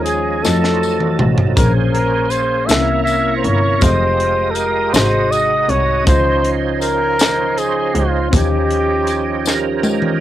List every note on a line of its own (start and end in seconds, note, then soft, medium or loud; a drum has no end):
0.00 0.44 D#2 loud
0.00 0.40 D#3 medium
0.00 0.44 F3 medium
0.00 0.43 G#3 medium
0.00 0.45 C#4 medium
0.00 0.44 D#4 medium
0.00 0.43 F4 medium
0.00 0.48 G#4 medium
0.00 0.44 G#4 medium
0.00 0.45 C#5 medium
0.06 closed hi-hat soft
0.06 tambourine soft
0.43 1.19 F2 medium
0.43 1.57 F3 medium
0.43 1.57 F#3 medium
0.43 1.56 A3 medium
0.43 1.57 D#4 medium
0.43 1.57 F4 medium
0.43 1.57 F#4 medium
0.43 1.29 A4 medium
0.43 1.57 A4 medium
0.43 snare medium
0.43 tambourine medium
0.47 1.58 D#5 medium
0.64 snare soft
0.83 tambourine soft
1.00 mid tom medium
1.19 1.54 A1 medium
1.19 mid tom medium
1.38 floor tom medium
1.56 2.65 A#1 medium
1.56 2.66 A#2 medium
1.56 2.66 A#3 medium
1.56 2.69 A#3 medium
1.56 2.69 C#4 soft
1.56 2.67 C#4 soft
1.56 2.69 G#4 soft
1.56 2.70 G#4 soft
1.56 1.72 A#4 medium
1.56 2.69 C5 medium
1.56 2.70 C5 medium
1.56 kick loud
1.56 closed hi-hat medium
1.56 tambourine medium
1.92 2.32 A#4 medium
1.92 closed hi-hat soft
2.30 2.68 C5 medium
2.30 closed hi-hat soft
2.30 tambourine soft
2.67 3.40 C2 medium
2.67 3.78 C3 medium
2.67 3.81 A#3 medium
2.67 3.82 C#4 medium
2.67 3.82 E4 medium
2.67 3.04 E5 medium
2.67 closed hi-hat medium
2.67 tambourine medium
2.71 3.83 A#3 medium
2.71 3.82 C4 medium
2.71 3.83 E4 medium
2.71 2.77 A#4 medium
2.71 3.83 C#5 medium
2.71 snare loud
2.78 3.86 A#4 medium
3.04 3.34 E5 medium
3.04 closed hi-hat soft
3.04 tambourine soft
3.37 3.46 C5 medium
3.44 3.79 G1 medium
3.44 3.83 C#5 loud
3.44 closed hi-hat soft
3.80 4.90 F1 medium
3.80 4.93 G#3 soft
3.80 4.93 G#3 medium
3.80 4.94 F4 medium
3.80 4.95 G4 medium
3.80 4.52 C5 medium
3.80 4.93 D#5 medium
3.80 4.94 D#5 medium
3.80 kick loud
3.80 closed hi-hat medium
3.80 tambourine medium
4.20 closed hi-hat soft
4.51 4.56 A4 medium
4.55 4.95 A#4 medium
4.55 closed hi-hat soft
4.55 tambourine soft
4.93 5.65 G#1 medium
4.93 6.03 G#2 medium
4.93 6.06 C3 medium
4.93 6.07 G#3 medium
4.93 6.06 D#4 medium
4.93 6.07 F#4 medium
4.93 6.08 F#4 medium
4.93 6.08 G#4 medium
4.93 5.33 C5 medium
4.93 6.07 D#5 medium
4.93 6.08 D#5 medium
4.93 snare loud
4.93 closed hi-hat medium
4.93 tambourine medium
5.31 5.71 D#5 medium
5.31 closed hi-hat soft
5.31 tambourine soft
5.69 6.04 C2 medium
5.69 6.07 C#5 medium
5.69 closed hi-hat soft
6.04 7.91 C#2 medium
6.04 7.16 C#3 medium
6.04 8.29 F3 medium
6.04 8.27 C#4 medium
6.04 8.29 C#4 medium
6.04 8.29 D#4 medium
6.04 8.28 F4 medium
6.04 8.29 C5 medium
6.04 6.52 C5 medium
6.04 kick loud
6.04 closed hi-hat medium
6.04 tambourine medium
6.08 8.29 C5 medium
6.08 8.30 D#5 medium
6.44 closed hi-hat soft
6.81 7.60 A#4 medium
6.81 closed hi-hat soft
6.81 tambourine soft
7.19 snare loud
7.19 closed hi-hat medium
7.19 tambourine medium
7.58 7.96 G#4 medium
7.58 closed hi-hat soft
7.58 tambourine soft
7.95 8.32 C#2 medium
7.95 8.33 F4 medium
7.95 closed hi-hat soft
8.30 10.17 D#2 loud
8.30 9.42 D#3 medium
8.30 10.20 F3 medium
8.30 10.20 C#4 medium
8.30 9.46 C#4 medium
8.30 10.20 D#4 medium
8.30 10.20 F4 medium
8.30 8.38 F#4 soft
8.30 kick loud
8.30 closed hi-hat medium
8.30 tambourine medium
8.34 10.20 G4 medium
8.34 9.80 G4 medium
8.34 9.45 G4 medium
8.34 10.20 D#5 medium
8.70 closed hi-hat soft
9.07 closed hi-hat soft
9.07 tambourine soft
9.46 10.20 C#4 medium
9.46 10.20 G4 medium
9.46 10.20 A#4 medium
9.46 snare medium
9.46 tambourine medium
9.83 high tom medium
9.83 tambourine soft
10.02 mid tom medium